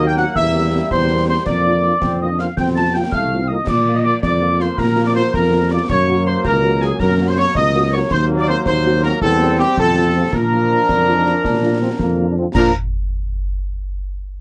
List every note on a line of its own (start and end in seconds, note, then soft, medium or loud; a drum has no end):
0.00 0.26 D#2 loud
0.00 0.32 F#3 medium
0.00 1.42 A#3 loud
0.07 0.12 G5 loud
0.07 0.18 G5 loud
0.07 0.12 G6 loud
0.17 0.24 A#3 medium
0.17 0.23 C4 medium
0.17 0.23 F#4 medium
0.17 0.34 F#5 loud
0.17 0.36 F#5 medium
0.17 0.23 F#6 medium
0.17 snare medium
0.35 0.82 E2 loud
0.35 1.46 G3 medium
0.35 0.87 E5 loud
0.35 0.88 E5 loud
0.35 0.87 E6 loud
0.35 concert bass drum medium
0.35 snare medium
0.53 0.60 A#3 medium
0.53 0.60 C4 medium
0.53 0.60 G4 medium
0.71 0.79 A#3 medium
0.71 0.78 C4 medium
0.71 0.78 G4 medium
0.90 1.37 E2 medium
0.90 1.25 C5 medium
0.90 1.27 C5 loud
0.90 1.25 C6 loud
0.90 concert bass drum medium
0.90 snare medium
1.10 1.16 A#3 medium
1.10 1.16 C4 medium
1.10 1.16 G4 medium
1.28 1.35 A#3 medium
1.28 1.35 C4 medium
1.28 1.35 G4 medium
1.28 1.45 C5 medium
1.28 1.46 C6 medium
1.45 1.93 F2 medium
1.45 1.98 F3 medium
1.45 1.94 A#3 medium
1.45 2.16 D5 loud
1.45 2.16 D5 medium
1.45 2.17 D6 medium
1.45 concert bass drum medium
1.45 snare medium
1.45 crash soft
1.65 1.72 A#3 medium
1.65 1.72 D4 medium
1.65 1.72 F4 medium
1.85 1.91 A#3 medium
1.85 1.92 D4 medium
1.85 1.91 F4 medium
1.99 2.49 F2 medium
1.99 2.26 C4 medium
1.99 concert bass drum medium
1.99 snare medium
2.21 2.28 A#3 medium
2.21 2.28 D4 medium
2.21 2.28 F4 medium
2.21 2.39 D#5 medium
2.21 2.40 D#5 medium
2.21 2.28 D#6 medium
2.30 2.39 D4 medium
2.38 2.46 A#3 medium
2.38 2.46 C4 medium
2.38 2.46 D4 medium
2.38 2.46 F4 medium
2.38 2.48 F5 medium
2.38 2.58 F5 medium
2.38 2.46 F6 medium
2.38 snare soft
2.57 3.04 F2 medium
2.57 2.91 C4 medium
2.57 2.66 G5 medium
2.57 2.67 G5 medium
2.57 2.63 G6 medium
2.57 concert bass drum medium
2.57 snare medium
2.75 2.83 A3 medium
2.75 2.83 C4 medium
2.75 2.83 F4 medium
2.75 2.93 A5 medium
2.75 2.94 A5 medium
2.75 2.81 A6 medium
2.93 3.02 A3 medium
2.93 3.13 A#3 medium
2.93 3.02 C4 medium
2.93 3.01 F4 medium
2.93 3.12 G5 medium
2.93 3.03 G5 medium
2.93 2.99 G6 medium
3.12 3.59 C2 medium
3.12 3.39 A3 medium
3.12 3.47 F5 medium
3.12 3.48 F5 medium
3.12 3.49 F6 medium
3.12 concert bass drum medium
3.12 snare medium
3.32 3.39 A3 medium
3.32 3.39 C4 medium
3.32 3.39 F4 medium
3.42 3.50 C4 medium
3.48 3.57 A3 medium
3.48 3.58 A#3 medium
3.48 3.56 C4 medium
3.48 3.56 F4 medium
3.48 3.68 D#5 medium
3.48 3.70 D#6 medium
3.66 4.15 A#2 medium
3.66 5.85 F3 medium
3.66 5.85 A#3 medium
3.66 3.80 D5 loud
3.66 3.96 D5 loud
3.66 3.94 D6 medium
3.66 concert bass drum medium
3.66 snare medium
3.66 crash medium
3.87 3.94 A#3 medium
3.87 3.93 F4 medium
3.95 4.04 D#5 medium
3.95 4.07 D#5 medium
3.95 3.99 D#6 medium
4.04 4.11 A#3 medium
4.04 4.11 F4 medium
4.04 4.22 D5 medium
4.04 4.14 D5 loud
4.04 4.21 D6 medium
4.22 4.70 F2 medium
4.22 4.58 D5 loud
4.22 4.63 D6 loud
4.22 concert bass drum medium
4.22 snare medium
4.41 4.48 A#3 medium
4.41 4.48 F4 medium
4.60 4.67 A#3 medium
4.60 4.66 F4 medium
4.60 4.79 C5 medium
4.60 4.80 C6 medium
4.60 snare medium
4.78 5.25 A#2 medium
4.78 5.06 A#4 loud
4.78 5.07 A#4 loud
4.78 5.06 A#5 medium
4.78 concert bass drum medium
4.78 snare medium
4.96 5.03 A#3 medium
4.96 5.03 F4 medium
5.06 5.11 D5 medium
5.06 5.16 D5 medium
5.06 5.15 D6 medium
5.15 5.22 A#3 medium
5.15 5.22 F4 medium
5.15 5.33 C5 loud
5.15 5.22 C6 medium
5.34 5.81 F2 medium
5.34 5.69 A#4 loud
5.34 5.73 A#5 medium
5.34 concert bass drum medium
5.34 snare medium
5.51 5.59 A#3 medium
5.51 5.59 F4 medium
5.71 5.78 A#3 medium
5.71 5.79 F4 medium
5.71 5.80 D5 medium
5.71 5.90 D6 medium
5.89 6.36 F#2 medium
5.89 8.08 F#3 medium
5.89 8.08 A#3 medium
5.89 6.24 C#5 loud
5.89 6.25 C#5 loud
5.89 6.26 C#6 loud
5.89 concert bass drum medium
5.89 snare medium
5.89 crash soft
6.08 6.15 A#3 medium
6.08 6.15 F#4 medium
6.26 6.33 A#3 medium
6.26 6.34 F#4 medium
6.26 6.44 C5 loud
6.26 6.46 C5 loud
6.26 6.43 C6 medium
6.44 6.92 C#2 medium
6.44 6.80 A#4 loud
6.44 6.83 A#5 loud
6.44 concert bass drum medium
6.44 snare medium
6.63 6.70 A#3 medium
6.63 6.70 F#4 medium
6.81 6.89 A#3 medium
6.81 6.89 F#4 medium
6.81 6.91 G#4 medium
6.81 7.01 G#5 loud
6.81 snare medium
7.00 7.47 F#2 loud
7.00 7.13 A#4 loud
7.00 7.27 A#4 loud
7.00 7.29 A#5 loud
7.00 concert bass drum medium
7.00 snare medium
7.19 7.26 A#3 medium
7.19 7.26 F#4 medium
7.28 7.33 C5 loud
7.28 7.39 C5 medium
7.28 7.36 C6 loud
7.36 7.44 A#3 medium
7.36 7.43 F#4 medium
7.36 7.46 C#5 loud
7.36 7.55 C#5 loud
7.36 7.55 C#6 loud
7.55 8.03 C#2 loud
7.55 7.90 D#5 loud
7.55 7.91 D#5 loud
7.55 7.90 D#6 loud
7.55 concert bass drum medium
7.55 snare medium
7.73 7.80 A#3 medium
7.73 7.81 F#4 medium
7.91 7.99 A#3 medium
7.91 7.99 F#4 medium
7.91 8.00 C#5 medium
7.91 8.12 C#5 loud
7.91 7.99 C#6 loud
8.11 8.58 D#2 loud
8.11 9.18 F#3 loud
8.11 9.18 A#3 loud
8.11 8.24 C5 loud
8.11 8.17 C6 loud
8.11 concert bass drum medium
8.11 snare medium
8.11 crash soft
8.29 8.36 A#3 medium
8.29 8.36 C4 medium
8.29 8.36 F#4 medium
8.37 8.42 D5 loud
8.37 8.44 D5 loud
8.37 8.49 D6 loud
8.47 8.55 A#3 medium
8.47 8.55 C4 medium
8.47 8.55 F#4 medium
8.47 8.65 C5 loud
8.47 8.57 C5 loud
8.47 8.56 C6 loud
8.66 9.13 D#2 loud
8.66 9.01 C5 loud
8.66 9.01 C6 loud
8.66 concert bass drum medium
8.66 snare medium
8.85 8.92 A#3 medium
8.85 8.92 C4 medium
8.85 8.92 F#4 medium
9.02 9.11 A#3 medium
9.02 9.11 C4 medium
9.02 9.11 F#4 medium
9.02 9.20 A#4 loud
9.02 9.12 A#4 loud
9.02 9.22 A#5 loud
9.02 snare medium
9.22 9.64 E2 loud
9.22 9.78 G3 loud
9.22 10.29 C4 loud
9.22 9.56 A4 loud
9.22 9.57 A4 loud
9.22 9.61 A5 loud
9.22 concert bass drum medium
9.22 snare medium
9.41 9.47 A#3 medium
9.41 9.48 C4 medium
9.41 9.48 G4 medium
9.58 9.66 A#3 medium
9.58 9.66 C4 medium
9.58 9.67 G4 loud
9.58 9.76 G4 loud
9.58 9.66 G4 medium
9.58 9.77 G5 loud
9.77 10.24 F2 loud
9.77 10.30 F3 loud
9.77 10.30 A4 loud
9.77 10.11 A5 loud
9.77 concert bass drum medium
9.77 snare medium
9.96 10.03 F3 medium
9.96 10.03 C4 medium
9.96 10.03 F4 medium
10.15 10.22 F3 medium
10.15 10.22 C4 medium
10.15 10.22 F4 medium
10.32 10.79 A#2 loud
10.32 12.33 F3 medium
10.32 12.37 D4 medium
10.32 12.33 A#4 loud
10.32 12.37 A#4 loud
10.32 12.32 A#5 loud
10.32 concert bass drum medium
10.32 snare medium
10.32 crash soft
10.52 10.59 F3 medium
10.52 10.59 D4 medium
10.52 10.59 F4 medium
10.71 10.78 F3 medium
10.71 10.77 D4 medium
10.71 10.78 F4 medium
10.88 11.35 F2 medium
10.88 11.15 D4 medium
10.88 concert bass drum medium
10.88 snare medium
11.07 11.14 F3 medium
11.07 11.14 D4 medium
11.07 11.14 F4 medium
11.17 11.21 D#4 medium
11.26 11.33 F3 medium
11.26 11.34 D4 medium
11.26 11.33 D4 medium
11.26 11.33 F4 medium
11.26 snare soft
11.43 11.91 A#2 medium
11.43 11.78 D4 loud
11.43 concert bass drum medium
11.43 snare medium
11.62 11.69 F3 medium
11.62 11.69 D4 medium
11.62 11.69 F4 medium
11.81 11.88 F3 medium
11.81 11.90 C4 medium
11.81 11.88 D4 medium
11.81 11.88 F4 medium
11.99 12.46 F2 medium
11.99 12.26 A#3 medium
11.99 concert bass drum medium
11.99 snare medium
12.18 12.25 F3 medium
12.18 12.25 D4 medium
12.18 12.25 F4 medium
12.30 12.34 D4 medium
12.38 12.44 F3 medium
12.38 12.46 C4 medium
12.38 12.45 D4 medium
12.38 12.44 F4 medium
12.54 12.71 A#2 loud
12.54 12.71 F3 loud
12.54 12.71 D4 loud
12.54 12.72 D4 medium
12.54 12.72 F4 loud
12.54 12.71 A#4 loud
12.54 12.72 A#4 loud
12.54 12.75 A#5 loud
12.54 concert bass drum loud
12.54 snare loud
12.54 crash medium